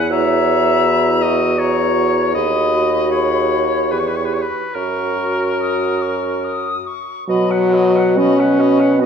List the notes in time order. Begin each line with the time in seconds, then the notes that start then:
Already playing: E2 E4 B4 F#5
0.11 F#4 C#5 E5 A#5
0.85 E4
1.21 F#4 D#5
1.58 F#4 C#5 A#5
2.34 D#2 F#4 G#4 D#5 B5
2.74 F#4
3.11 G#4 C#5
3.54 F#4
3.91 E2 G4 B4 C#6
3.99 C#5
4.08 B4
4.15 C#5
4.25 B4
4.33 C#5
4.42 B4
4.74 F#2 F#4 A#4 C#6
5.60 D#6
6.02 C#6
6.44 D#6
6.87 C#6
7.29 B2 F#3 F#4 D#5 B5
7.50 B4 F#5
7.73 F#4 D#5 B5
7.95 B4 F#5
8.16 C#4 F#4 D#5 B5
8.38 B4 F#5
8.59 F#4 D#5 B5
8.80 B4 F#5
9.01 B3 F#4 D#5 B5